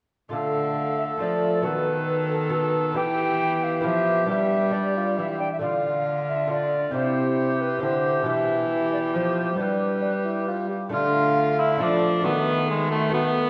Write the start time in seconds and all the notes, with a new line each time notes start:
0.29 D3 A3 F4 A4 F5
0.33 A4
0.98 E5
1.18 F3 A3 F4 A4 D5
1.22 A3 A4
1.62 D#3 B3 F#4 A4 B4
2.30 A4
2.49 B3 F#4 A4 B4
2.92 E3 B3 E4 G4 G5
2.96 E3 G4
3.64 F5
3.81 F3 B3 E4 G4
3.85 F3 B3 G4 E5
4.26 G3 B3 D4 G4 E5
4.31 G4
4.71 B3 D4 G4 D5
4.97 F4
5.18 E3 E4 E5
5.31 F5
5.40 D4 G5
5.52 E5
5.59 D3 A3 D4 F4 F5
6.29 E5
6.47 A3 D4 F4
6.52 D5
6.91 C3 C4 E4 G4
6.95 E4 G4 C5
7.61 B4
7.79 D3 C4 E4 G4
7.83 D3 G4 C5
8.22 B2 E3 E4 G4
8.27 G4 E5
8.93 D5
9.14 F3 C5
9.56 G3 B3 D4 G4
9.60 B4
10.02 D4
10.25 E4
10.48 F4
10.69 G4
10.89 D3 A3 D4 F4 F5
10.94 F4
11.59 E4 E5
11.77 F3 A3 D4 F4 D5
11.82 D4
12.21 D#3 A3 B3 F#4 B4
12.25 D#3
12.67 G#3 G#4
12.90 A3 A4
13.09 A3 B3 F#4 B4
13.14 B3